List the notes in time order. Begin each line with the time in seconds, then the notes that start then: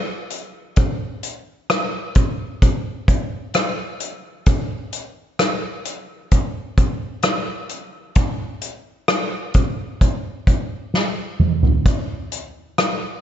0.30 closed hi-hat
0.76 kick, closed hi-hat
1.23 closed hi-hat
1.70 cross-stick, closed hi-hat
2.15 kick, closed hi-hat
2.62 kick, closed hi-hat
3.08 kick, closed hi-hat
3.54 cross-stick, closed hi-hat
4.00 closed hi-hat
4.46 kick, closed hi-hat
4.93 closed hi-hat
5.39 cross-stick, closed hi-hat
5.85 closed hi-hat
6.31 kick, closed hi-hat
6.78 kick, closed hi-hat
7.23 cross-stick, closed hi-hat
7.69 closed hi-hat
8.15 kick, closed hi-hat
8.62 closed hi-hat
9.08 cross-stick, closed hi-hat
9.54 kick, closed hi-hat
10.01 kick, closed hi-hat
10.47 kick, closed hi-hat
10.94 snare
11.40 mid tom
11.63 floor tom
11.86 kick, closed hi-hat
12.32 closed hi-hat
12.78 cross-stick, closed hi-hat